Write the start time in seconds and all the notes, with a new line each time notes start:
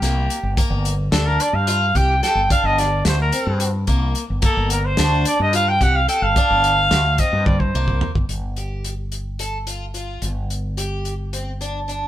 Already playing: G4
0.02 C2 A#3, snare, closed hi-hat
0.30 closed hi-hat
0.43 G1
0.57 A#3, kick, closed hi-hat
0.70 G1
0.85 closed hi-hat
1.12 D2 D4 A4, snare, closed hi-hat
1.27 A#4
1.40 D5, closed hi-hat
1.53 G2 F5
1.67 F4, closed hi-hat
1.95 C2 G4 G5, kick, closed hi-hat
2.23 A4 G5, snare, closed hi-hat
2.35 G1
2.50 D4 F5, kick, closed hi-hat
2.63 G1 D#5
2.78 D5, snare, closed hi-hat
3.05 D2 C5, snare, closed hi-hat
3.22 A#4
3.32 C4, closed hi-hat
3.47 G2
3.60 closed hi-hat
3.87 C2 A#3, kick, closed hi-hat
4.15 closed hi-hat
4.30 G1
4.42 A#3 A4, kick, closed hi-hat
4.57 G1
4.70 A#4, closed hi-hat
4.86 C5
4.97 D2 D4, snare, closed hi-hat
5.25 D5, closed hi-hat
5.40 G2 D#5
5.53 F4 F5, closed hi-hat
5.69 G5
5.81 C2 G4 F#5, kick, closed hi-hat
5.96 F5
6.08 A4 G5, closed hi-hat
6.22 G1 F5
6.36 D4, kick, closed hi-hat
6.50 G1
6.64 closed hi-hat
6.91 D2, snare, closed hi-hat
7.18 C4 D#5, kick, closed hi-hat
7.33 G2
7.46 D5, kick, high tom
7.60 C5, kick
7.75 C2 A#3
7.88 kick
8.01 floor tom
8.15 G1, kick
8.29 G1, closed hi-hat
8.57 G4, closed hi-hat
8.84 closed hi-hat
9.12 closed hi-hat
9.39 A4, closed hi-hat
9.67 F4, closed hi-hat
9.94 F4, closed hi-hat
10.22 G1, closed hi-hat
10.50 closed hi-hat
10.77 G4, closed hi-hat
11.05 closed hi-hat
11.33 C4, closed hi-hat
11.61 D4, closed hi-hat
11.88 D4, closed hi-hat